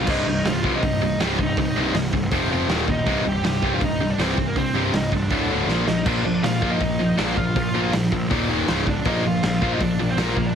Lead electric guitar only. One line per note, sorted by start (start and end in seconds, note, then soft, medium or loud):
0.09 0.26 D#4 medium
0.09 0.27 D#5 medium
0.27 0.44 D#4 medium
0.27 0.48 D#5 medium
0.47 0.72 F4 medium
0.47 0.75 F5 medium
0.74 1.17 D#4 medium
0.74 1.18 D#5 loud
1.21 1.38 C4 medium
1.21 1.40 C5 medium
1.39 1.91 D#4 medium
1.39 1.96 D#5 medium
2.90 3.24 D#4 medium
2.90 3.28 D#5 loud
3.27 3.44 G4 medium
3.27 3.45 G5 loud
3.46 3.71 G4 medium
3.46 3.71 G5 loud
3.74 3.82 F4 medium
3.74 3.84 F5 medium
3.84 4.09 D#4 medium
3.84 4.12 D#5 loud
4.11 4.19 D4 medium
4.11 4.20 D5 medium
4.20 4.46 C4 medium
4.20 4.47 C5 medium
4.47 4.56 A#3 medium
4.47 4.57 A#4 medium
4.57 4.83 C4 medium
4.57 4.84 C5 medium
4.85 4.89 C4 medium
4.85 4.89 C5 medium
4.95 5.12 D#4 medium
4.95 5.13 D#5 loud
5.13 5.48 D4 medium
5.13 5.50 D5 medium
5.88 6.06 D#4 medium
5.88 6.06 D#5 medium
6.06 6.24 D4 medium
6.06 6.23 D5 loud
6.24 6.43 D4 medium
6.24 6.44 D5 medium
6.43 6.70 F4 medium
6.43 6.72 F5 loud
6.71 7.16 D#4 medium
6.71 7.17 D#5 loud
7.18 7.37 D4 medium
7.18 7.37 D5 medium
7.37 7.90 F4 medium
7.37 7.93 F5 medium
8.88 9.05 D4 medium
8.88 9.07 D5 loud
9.07 9.24 D#4 medium
9.07 9.26 D#5 loud
9.26 9.43 F4 medium
9.26 9.43 F5 loud
9.44 9.70 F4 medium
9.44 9.72 F5 loud
9.73 9.81 D#4 medium
9.73 9.81 D#5 loud
9.82 10.07 D4 medium
9.82 10.10 D5 loud
10.09 10.17 C4 medium
10.09 10.19 C5 medium
10.19 10.45 A#3 medium
10.19 10.47 A#4 medium
10.46 10.54 D4 medium
10.46 10.54 D5 medium